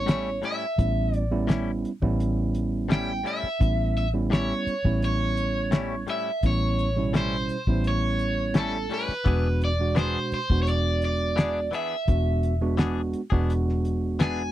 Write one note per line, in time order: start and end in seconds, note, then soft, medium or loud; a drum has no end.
0.00 0.40 A1 medium
0.00 0.37 G3 medium
0.00 0.37 B3 medium
0.00 0.38 C#4 medium
0.00 0.38 E4 medium
0.00 0.45 C#5 medium
0.06 0.28 A2 medium
0.06 0.29 G3 medium
0.06 0.29 C#4 medium
0.06 0.30 E4 medium
0.06 snare loud
0.06 closed hi-hat medium
0.42 0.64 A2 medium
0.42 0.64 G3 medium
0.42 0.65 C#4 medium
0.42 0.66 E4 medium
0.42 1.16 E5 medium
0.42 closed hi-hat medium
0.78 1.84 A1 medium
0.78 1.23 G3 medium
0.78 1.23 B3 medium
0.78 1.23 C#4 medium
0.78 1.23 E4 medium
0.78 kick medium
0.78 closed hi-hat medium
1.13 1.46 D5 medium
1.13 closed hi-hat medium
1.31 1.90 G3 medium
1.31 1.90 B3 medium
1.31 1.90 C#4 medium
1.31 1.90 E4 medium
1.47 1.70 A2 medium
1.47 1.70 G3 medium
1.47 1.70 C#4 medium
1.47 1.71 E4 medium
1.47 snare loud
1.47 closed hi-hat medium
1.85 closed hi-hat medium
2.02 3.22 A1 medium
2.02 3.20 G3 medium
2.02 3.20 B3 medium
2.02 3.20 C#4 medium
2.02 3.20 E4 medium
2.02 kick medium
2.20 closed hi-hat medium
2.55 closed hi-hat medium
2.89 3.11 A2 medium
2.89 3.11 G3 medium
2.89 3.12 C#4 medium
2.89 3.12 E4 medium
2.89 snare loud
2.89 closed hi-hat medium
2.93 3.24 G5 loud
3.24 3.46 A2 medium
3.24 3.47 G3 medium
3.24 3.47 C#4 medium
3.24 3.48 E4 medium
3.24 closed hi-hat medium
3.28 3.96 E5 medium
3.43 muted fingered electric bass stroke soft
3.60 4.51 A1 loud
3.60 4.05 G3 medium
3.60 4.05 B3 medium
3.60 4.05 C#4 medium
3.60 4.06 E4 medium
3.60 kick medium
3.60 closed hi-hat medium
3.97 4.07 E5 medium
3.97 closed hi-hat medium
4.14 4.73 G3 medium
4.14 4.73 B3 medium
4.14 4.73 C#4 medium
4.14 4.73 E4 medium
4.30 4.52 A2 medium
4.30 4.53 G3 medium
4.30 4.53 C#4 medium
4.30 4.54 E4 medium
4.30 5.04 C#5 medium
4.30 snare loud
4.30 closed hi-hat medium
4.67 muted fingered electric bass stroke soft
4.67 closed hi-hat medium
4.84 6.05 A1 medium
4.84 6.02 G3 medium
4.84 6.02 B3 medium
4.84 6.03 C#4 medium
4.84 6.03 E4 medium
4.84 kick medium
5.02 6.10 C#5 medium
5.02 closed hi-hat medium
5.37 closed hi-hat medium
5.71 5.94 A2 medium
5.71 5.94 G3 medium
5.71 5.94 C#4 medium
5.71 5.95 E4 medium
5.71 snare loud
5.71 closed hi-hat medium
6.07 6.29 A2 medium
6.07 6.29 G3 medium
6.07 6.30 C#4 medium
6.07 6.30 E4 medium
6.07 6.45 E5 medium
6.07 closed hi-hat medium
6.43 7.49 A1 medium
6.43 6.88 G3 medium
6.43 6.88 B3 medium
6.43 6.88 C#4 medium
6.43 6.88 E4 medium
6.43 7.17 C#5 medium
6.43 kick medium
6.43 closed hi-hat medium
6.79 closed hi-hat medium
6.96 7.55 B2 medium
6.96 7.55 G3 medium
6.96 7.56 C#4 medium
6.96 7.56 E4 medium
7.13 7.35 A2 medium
7.13 7.36 G3 medium
7.13 7.36 C#4 medium
7.13 7.36 E4 medium
7.13 7.88 C5 medium
7.13 snare loud
7.13 closed hi-hat medium
7.49 closed hi-hat medium
7.67 8.87 A1 medium
7.67 8.85 G3 medium
7.67 8.85 B3 medium
7.67 8.85 C#4 medium
7.67 8.86 E4 medium
7.67 kick medium
7.84 8.59 C#5 medium
7.84 closed hi-hat medium
8.19 closed hi-hat medium
8.54 8.76 A2 medium
8.54 8.77 G3 medium
8.54 8.77 C#4 medium
8.54 8.77 E4 medium
8.54 8.93 A4 medium
8.54 snare loud
8.54 closed hi-hat medium
8.90 9.12 A2 medium
8.90 9.12 G3 medium
8.90 9.13 C#4 medium
8.90 9.13 E4 medium
8.90 open hi-hat medium
8.94 9.64 B4 medium
9.09 muted fingered electric bass stroke soft
9.09 snare soft
9.25 10.16 E1 medium
9.25 9.47 E3 medium
9.25 9.70 G#3 medium
9.25 9.47 B3 medium
9.25 9.70 B3 medium
9.25 9.71 D4 medium
9.25 9.48 D4 medium
9.25 9.71 F#4 medium
9.25 9.48 G#4 medium
9.25 kick medium
9.25 closed hi-hat medium
9.62 9.98 D5 medium
9.62 closed hi-hat soft
9.80 10.38 B2 medium
9.80 10.38 G#3 medium
9.80 10.39 D4 medium
9.80 10.39 F#4 medium
9.95 10.17 E3 medium
9.95 10.18 B3 medium
9.95 10.18 D4 medium
9.95 10.18 G#4 medium
9.95 10.33 C5 medium
9.95 snare medium
9.95 closed hi-hat medium
10.32 10.60 C5 medium
10.32 muted fingered electric bass stroke soft
10.32 closed hi-hat medium
10.50 11.70 E1 medium
10.50 11.68 G#3 medium
10.50 11.68 B3 medium
10.50 11.68 D4 medium
10.50 11.68 F#4 medium
10.50 kick medium
10.63 10.68 C#5 medium
10.67 11.04 D5 medium
10.67 closed hi-hat medium
11.02 11.75 D5 medium
11.02 closed hi-hat medium
11.36 11.58 E3 medium
11.36 11.59 B3 medium
11.36 11.59 D4 medium
11.36 11.60 G#4 medium
11.36 snare loud
11.36 closed hi-hat medium
11.71 11.94 E3 medium
11.71 11.94 B3 medium
11.71 11.95 D4 medium
11.71 11.95 G#4 medium
11.71 closed hi-hat medium
11.75 12.76 E5 medium
12.08 13.13 E1 medium
12.08 12.53 G#3 medium
12.08 12.53 B3 medium
12.08 12.53 D4 medium
12.08 12.53 F#4 medium
12.08 kick medium
12.08 closed hi-hat medium
12.43 closed hi-hat medium
12.61 13.20 G#3 medium
12.61 13.20 B3 medium
12.61 13.20 D4 medium
12.61 13.20 F#4 medium
12.77 13.00 E3 medium
12.77 13.00 B3 medium
12.77 13.00 D4 medium
12.77 13.01 G#4 medium
12.77 snare loud
12.77 closed hi-hat medium
13.13 closed hi-hat medium
13.30 14.52 E1 medium
13.30 14.49 G#3 medium
13.30 14.50 B3 medium
13.30 13.54 B3 soft
13.30 13.53 D4 soft
13.30 14.50 D4 medium
13.30 14.50 F#4 medium
13.30 13.52 G#4 medium
13.30 kick medium
13.50 closed hi-hat medium
13.69 snare soft
13.85 closed hi-hat medium
14.19 14.41 E3 medium
14.19 14.41 B3 medium
14.19 14.42 D4 medium
14.19 14.42 G#4 medium
14.19 14.52 G#5 loud
14.19 snare loud
14.19 closed hi-hat medium